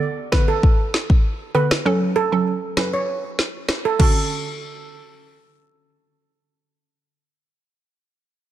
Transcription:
0.32 D3 B3 A4 B4, kick, cross-stick, snare
0.48 A4
0.63 kick
0.94 snare
1.10 kick
1.55 D3 B3 A4 B4
1.71 cross-stick, snare
1.85 F#3 C#4 A4
2.16 A4
2.32 F#3 C#4 A4
2.77 F#3 C#4 A4 B4, cross-stick, snare
2.94 C#5
3.39 snare
3.69 cross-stick, snare
3.85 A4
3.99 D3 C#4 F#4 A4, kick, crash

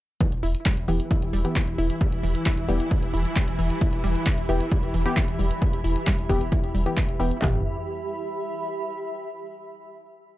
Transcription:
0.21 E3 E4 G4, kick, closed hi-hat
0.32 E1, closed hi-hat
0.43 E1 E4, open hi-hat
0.55 closed hi-hat
0.66 G3, kick, clap, closed hi-hat
0.74 E1 E5, closed hi-hat
0.88 E1 E3 B3 G4, open hi-hat
1.00 closed hi-hat
1.11 E4, kick, closed hi-hat
1.22 E1, closed hi-hat
1.33 E1 G3, open hi-hat
1.45 E3 B3 G4, closed hi-hat
1.56 E3, kick, clap, closed hi-hat
1.67 E1 B5, closed hi-hat
1.78 E1 E4, open hi-hat
1.90 closed hi-hat
2.01 G3, kick, closed hi-hat
2.12 E1, closed hi-hat
2.23 E1 E3, open hi-hat
2.35 closed hi-hat
2.46 E4, kick, clap, closed hi-hat
2.57 E1, closed hi-hat
2.68 E1 E3 G3 B3 G4, open hi-hat
2.80 closed hi-hat
2.91 E3, kick, closed hi-hat
3.03 E1, closed hi-hat
3.14 E1 E4, open hi-hat
3.25 closed hi-hat
3.36 G3, kick, clap, closed hi-hat
3.48 E1, closed hi-hat
3.59 E1 E3, open hi-hat
3.70 closed hi-hat
3.81 E4, kick, closed hi-hat
3.93 E1, closed hi-hat
4.04 E1 G3, open hi-hat
4.15 closed hi-hat
4.26 E3, kick, clap, closed hi-hat
4.38 E1, closed hi-hat
4.49 E1 E3 B3 E4 G4, open hi-hat
4.61 closed hi-hat
4.72 G3, kick, closed hi-hat
4.83 E1, closed hi-hat
4.94 E1 E3, open hi-hat
5.06 E3 B3 G4, closed hi-hat
5.17 E4, kick, clap, closed hi-hat
5.28 E1, closed hi-hat
5.39 E1 G3, open hi-hat
5.51 closed hi-hat
5.62 E3, kick, closed hi-hat
5.73 E1, closed hi-hat
5.84 E1 E4, open hi-hat
5.96 closed hi-hat
6.07 G3, kick, clap, closed hi-hat
6.18 E1, closed hi-hat
6.29 E1 E3 B3 G4, kick, open hi-hat
6.41 closed hi-hat
6.52 E4, kick, closed hi-hat
6.63 E1, closed hi-hat
6.75 E1 G3, open hi-hat
6.86 E3 B3 G4, closed hi-hat
6.97 E3, kick, clap, closed hi-hat
7.09 E1, closed hi-hat
7.20 E1 E3 B3 E4 G4, open hi-hat
7.31 closed hi-hat
7.42 E1 E3 B3 G4, kick, clap, floor tom
7.49 E5
7.56 B5

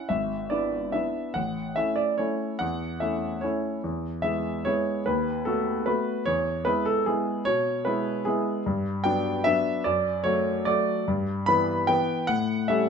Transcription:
Already playing: F#5
0.09 G#1 E5
0.50 B3 D4 E4 D5
0.92 B3 D4 E4 E5
1.34 A1 F#5
1.76 A3 C#4 E4 E5
1.96 D5
2.18 A3 C#4 E4 C#5
2.59 E2 F#5
3.00 A3 C#4 E4 E5
3.41 A3 C#4 E4 C#5
3.84 E2
4.22 G#3 B3 E4 E5
4.65 G#3 B3 E4 C#5
5.06 D#2 B4
5.45 A3 B3 F#4 A4
5.86 A3 B3 F#4 B4
6.26 E2 C#5
6.65 G#3 B3 E4 B4
6.85 A4
7.06 G#3 B3 E4 G#4
7.45 B2 C#5
7.85 G#3 B3 E4 B4
8.25 G#3 B3 E4 G#4
8.66 G2
9.04 F#3 B3 D4 G5
9.44 F#3 B3 D4 E5
9.84 F#2 D5
10.24 F#3 A3 F#4 C#5
10.65 F#3 A3 F#4 D5
11.08 G2
11.46 E3 B3 B4 B5
11.87 E3 B3 B4 G5
12.27 A2 F#5
12.68 G3 C#4 A4 E5

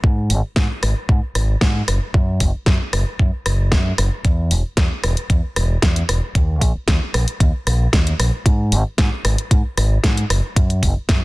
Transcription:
0.04 G#2, kick
0.30 G#1, open hi-hat
0.56 G#2, kick, snare
0.83 G#1, cross-stick, open hi-hat
1.09 G#2, kick
1.35 G#1, cross-stick, open hi-hat
1.61 G#2, kick, snare
1.88 F#1, cross-stick, open hi-hat
2.14 F#2, kick
2.40 F#1, kick, open hi-hat
2.54 muted fingered electric bass stroke
2.66 F#2, kick, snare
2.93 F#1, cross-stick, open hi-hat
3.19 F#2, kick
3.46 F#1, cross-stick, open hi-hat
3.72 F#2, kick, snare
3.98 F#1, cross-stick, open hi-hat
4.25 E2, kick, closed hi-hat
4.51 E1, open hi-hat
4.77 E2, kick, snare, closed hi-hat
5.04 E1, cross-stick, open hi-hat
5.17 closed hi-hat
5.30 E2, kick, closed hi-hat
5.56 E1, cross-stick, open hi-hat
5.82 E2, kick, snare, closed hi-hat
5.96 closed hi-hat
6.09 E1, cross-stick, open hi-hat
6.35 D#2, kick, closed hi-hat
6.61 A#1, kick, open hi-hat
6.88 D#2, kick, snare, closed hi-hat
7.14 A#1, cross-stick, open hi-hat
7.28 closed hi-hat
7.40 D#2, kick, closed hi-hat
7.67 A#1, cross-stick, open hi-hat
7.93 D#2, kick, snare, closed hi-hat
8.07 closed hi-hat
8.19 A#1, cross-stick, open hi-hat
8.46 G#2, kick, closed hi-hat
8.72 G#1, open hi-hat
8.98 G#2, kick, snare, closed hi-hat
9.25 G#1, cross-stick, open hi-hat
9.38 closed hi-hat
9.51 G#2, kick, closed hi-hat
9.77 G#1, cross-stick, open hi-hat
10.04 G#2, kick, snare, closed hi-hat
10.17 closed hi-hat
10.30 F#1, cross-stick, open hi-hat
10.56 F#2, kick, closed hi-hat
10.70 closed hi-hat
10.83 F#1, kick, open hi-hat
11.09 F#2, kick, snare, closed hi-hat

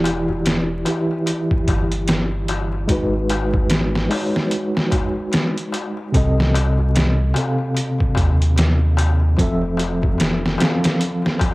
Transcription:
Already playing: E1 E3 E4 G4 D5
0.04 closed hi-hat, darbuka tek
0.28 darbuka tek, darbuka dum
0.45 snare, closed hi-hat, darbuka tek
0.85 E3 E4 G4, closed hi-hat, darbuka tek
0.90 E5
1.11 darbuka tek
1.26 closed hi-hat, darbuka tek
1.51 kick, darbuka tek
1.67 G1, kick, closed hi-hat, darbuka tek
1.92 closed hi-hat, darbuka tek
2.08 snare, closed hi-hat, darbuka tek
2.32 darbuka tek
2.48 closed hi-hat, darbuka tek
2.73 darbuka tek
2.88 G#1 G#3 D#4 F#4, kick, closed hi-hat, darbuka tek
2.92 B4
3.13 darbuka tek
3.29 closed hi-hat, darbuka tek
3.53 kick, darbuka tek, darbuka dum
3.70 snare, closed hi-hat, darbuka tek
3.95 snare
4.09 G#3 D#4 F#4, open hi-hat, darbuka tek
4.14 C#5
4.33 snare, darbuka tek
4.51 closed hi-hat, darbuka tek
4.75 snare, darbuka tek
4.91 kick, closed hi-hat, darbuka tek
5.16 darbuka tek
5.32 snare, closed hi-hat, darbuka tek
5.56 closed hi-hat, darbuka tek
5.72 closed hi-hat, darbuka tek
5.97 darbuka tek
6.12 C2 C3 C4 A4, kick, closed hi-hat, darbuka tek
6.17 D#5
6.38 snare, darbuka tek
6.54 closed hi-hat, darbuka tek
6.77 darbuka tek, darbuka dum
6.95 snare, closed hi-hat, darbuka tek
7.34 C3 C4 A4, closed hi-hat, darbuka tek
7.40 F5
7.58 darbuka tek
7.75 closed hi-hat, darbuka tek
7.98 kick, darbuka tek
8.15 D#2, kick, closed hi-hat, darbuka tek
8.40 closed hi-hat, darbuka tek
8.56 snare, closed hi-hat, darbuka tek
8.79 darbuka tek
8.97 closed hi-hat, darbuka tek
9.20 darbuka tek
9.37 F1 F3 C4 A4, kick, closed hi-hat, darbuka tek
9.43 E5
9.62 darbuka tek
9.77 closed hi-hat, darbuka tek
10.02 kick, darbuka tek, darbuka dum
10.18 snare, closed hi-hat, darbuka tek
10.46 snare
10.58 F3 C4, snare, closed hi-hat, darbuka tek
10.63 A4 F5
10.83 snare, closed hi-hat, darbuka tek
11.00 closed hi-hat, darbuka tek
11.22 snare, darbuka tek
11.39 kick, closed hi-hat, darbuka tek

